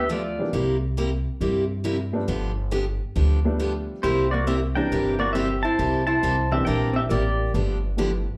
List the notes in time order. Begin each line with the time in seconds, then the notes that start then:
Already playing: D2
0.09 D3 F3 A3 B3 D4 F4 G4 D5
0.39 E3 G3 A#3 C4 D4
0.53 C2 C3 G3 A#3 E4 G4
0.97 C3 G3 A#3 E4 G4
1.41 G2 C3 G3 A#3 E4 G4
1.84 C3 G3 A#3 E4 G4
2.13 F3 G3 A3 B3 D4
2.28 G1 D3 F3 B3 D4 G4
2.71 D3 F3 B3 D4 G4
3.16 D2 D3 F3 B3 D4 G4
3.44 F3 G3 A3 B3 D4
3.59 D3 F3 B3 D4 G4
4.03 C2 C3 G3 A#3 E4 G4 C5
4.31 A#3 F#4 D5
4.47 C3 G3 A#3 C4 E4 G4 E5
4.75 E3 G3 A#3 C4 D4 A#4 G5
4.92 G1 C3 G3 A#3 E4 G4
5.19 A#3 F#4 D5
5.33 C3 G3 A#3 C4 E4 G4 E5
5.63 E4 C5 A5
5.79 C2 C3 G3 A#3 E4 G4
6.07 E4 C5 A5
6.23 C2 C3 G3 A#3 E4 G4
6.52 E3 G3 A#3 C4 D4 G4 E5
6.65 A#1 C3 G3 A#3 D4 E4 G4 A#4 G5
6.93 C4 E5
6.98 G4
7.09 A1 C3 G3 A#3 E4 G4 D5
7.54 G1 D3 F3 G3 A3 B3 D4 G4
7.96 D3 F3 G3 A3 B3 D4 E4 G4